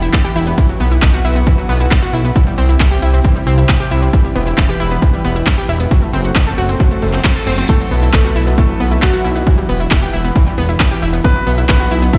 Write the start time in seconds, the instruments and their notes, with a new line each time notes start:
Already playing: analog synth pad E3 E4 G4 B4
0.02 synth pluck E4, closed hi-hat, shaker
0.13 kick, clap, closed hi-hat, shaker
0.25 synth pluck G4, shaker
0.36 analog synth bass E1, synth pluck E4, open hi-hat
0.47 synth pluck B3, closed hi-hat, shaker
0.58 synth pluck E3, analog synth pad B3 F#4, kick, closed hi-hat, shaker
0.69 synth pluck F#3, shaker
0.80 analog synth bass B1, synth pluck B3, open hi-hat
0.91 synth pluck E4, closed hi-hat, shaker
1.02 analog synth bass B1, kick, clap, closed hi-hat, shaker
1.13 synth pluck F#4, shaker
1.25 analog synth bass B1, synth pluck E4, open hi-hat
1.36 synth pluck B3, closed hi-hat, shaker
1.47 synth pluck E3, kick, closed hi-hat, shaker
1.58 synth pluck F#3, shaker
1.69 analog synth bass B1, synth pluck B3, open hi-hat
1.80 synth pluck E4, closed hi-hat, shaker
1.91 kick, clap, closed hi-hat, shaker
2.02 synth pluck F#4, shaker
2.13 analog synth bass B1, synth pluck E4, open hi-hat
2.25 synth pluck B3, closed hi-hat, shaker
2.35 analog synth pad C3 C4 E4 G4, synth pluck E3, kick, closed hi-hat, shaker
2.47 synth pluck G3, shaker
2.58 analog synth bass C2, synth pluck C4, open hi-hat
2.69 synth pluck E4, closed hi-hat, shaker
2.80 analog synth bass C2, kick, clap, closed hi-hat, shaker
2.91 synth pluck G4, shaker
3.02 analog synth bass C2, synth pluck E4, open hi-hat
3.13 synth pluck C4, closed hi-hat, shaker
3.24 synth pluck E3, kick, closed hi-hat, shaker
3.36 synth pluck G3, shaker
3.47 analog synth bass C2, synth pluck C4, open hi-hat
3.58 synth pluck E4, closed hi-hat, shaker
3.69 kick, clap, closed hi-hat, shaker
3.80 synth pluck G4, shaker
3.91 analog synth bass C2, synth pluck E4, open hi-hat
4.02 synth pluck C4, closed hi-hat, shaker
4.13 analog synth pad E3 B4, synth pluck E3, kick, closed hi-hat, shaker
4.24 synth pluck G3, shaker
4.36 analog synth bass E1, synth pluck B3, open hi-hat
4.47 synth pluck E4, closed hi-hat, shaker
4.58 analog synth bass E1, kick, clap, closed hi-hat, shaker
4.69 synth pluck G4, shaker
4.80 analog synth bass E1, synth pluck E4, open hi-hat
4.91 synth pluck B3, closed hi-hat, shaker
5.02 synth pluck E3, kick, closed hi-hat, shaker
5.13 synth pluck G3, shaker
5.24 analog synth bass E1, synth pluck B3, open hi-hat
5.36 synth pluck E4, closed hi-hat, shaker
5.47 kick, clap, closed hi-hat, shaker
5.58 synth pluck G4, shaker
5.69 analog synth bass E1, synth pluck E4, open hi-hat
5.80 synth pluck B3, closed hi-hat, shaker
5.91 synth pluck F#3, analog synth pad A3 C4 F#4, kick, closed hi-hat, shaker
6.02 synth pluck A3, shaker
6.13 analog synth bass F#1, synth pluck C4, open hi-hat
6.24 synth pluck F#4, closed hi-hat, shaker
6.36 analog synth bass F#1, kick, clap, closed hi-hat, shaker
6.47 synth pluck A4, shaker
6.58 analog synth bass F#1, synth pluck F#4, open hi-hat
6.69 synth pluck C4, closed hi-hat, shaker
6.80 synth pluck F#3, kick, closed hi-hat, reverse cymbal, shaker
6.91 synth pluck A3, shaker
7.02 analog synth bass F#1, synth pluck A3, open hi-hat
7.13 synth pluck C4, clap, closed hi-hat, shaker
7.24 synth pluck F#3, kick, clap, closed hi-hat, shaker
7.36 synth pluck A4, shaker
7.47 analog synth bass F#1, synth pluck C4, open hi-hat
7.58 synth pluck C4, closed hi-hat, shaker
7.69 synth pluck E3, analog synth pad F#3 B3 E4, grand piano A3 A4, kick, closed hi-hat, crash, shaker
7.80 synth pluck F#3, shaker
7.91 analog synth bass B1, synth pluck B3, open hi-hat
8.02 synth pluck E4, closed hi-hat, shaker
8.13 analog synth bass B1, grand piano A3 A4, kick, clap, closed hi-hat, shaker
8.25 synth pluck F#4, shaker
8.36 analog synth bass B1, synth pluck E4, open hi-hat
8.47 synth pluck B3, closed hi-hat, shaker
8.58 synth pluck E3, grand piano A3 A4, kick, closed hi-hat, shaker
8.69 synth pluck F#3, shaker
8.80 analog synth bass B1, synth pluck B3, open hi-hat
8.91 synth pluck E4, closed hi-hat, shaker
9.02 grand piano F#3 F#4, kick, clap, closed hi-hat, shaker
9.13 synth pluck F#4, shaker
9.24 analog synth bass B1, synth pluck E4, open hi-hat
9.36 synth pluck B3, closed hi-hat, shaker
9.47 synth pluck E3, analog synth pad E3 B4, kick, closed hi-hat, shaker
9.58 synth pluck G3, shaker
9.69 analog synth bass E1, synth pluck B3, open hi-hat
9.80 synth pluck E4, closed hi-hat, shaker
9.91 analog synth bass E1, kick, clap, closed hi-hat, shaker
10.02 synth pluck G4, shaker
10.13 analog synth bass E1, synth pluck E4, open hi-hat
10.25 synth pluck B3, closed hi-hat, shaker
10.36 synth pluck E3, kick, closed hi-hat, shaker
10.47 synth pluck G3, shaker
10.58 analog synth bass E1, synth pluck B3, open hi-hat
10.69 synth pluck E4, closed hi-hat, shaker
10.80 kick, clap, closed hi-hat, shaker
10.91 synth pluck G4, shaker
11.02 analog synth bass E1, synth pluck E4, open hi-hat
11.13 synth pluck B3, closed hi-hat, shaker
11.24 synth pluck E3, analog synth pad F#3 B3 E4, grand piano B3 B4, kick, closed hi-hat, shaker
11.36 synth pluck F#3, shaker
11.47 analog synth bass B1, synth pluck B3, open hi-hat
11.58 synth pluck E4, closed hi-hat, shaker
11.69 analog synth bass B1, grand piano B3 B4, kick, clap, closed hi-hat, shaker
11.80 synth pluck F#4, shaker
11.91 analog synth bass B1, synth pluck E4, open hi-hat
12.02 synth pluck B3, closed hi-hat, shaker
12.13 synth pluck E3, grand piano E4 E5, kick, closed hi-hat, shaker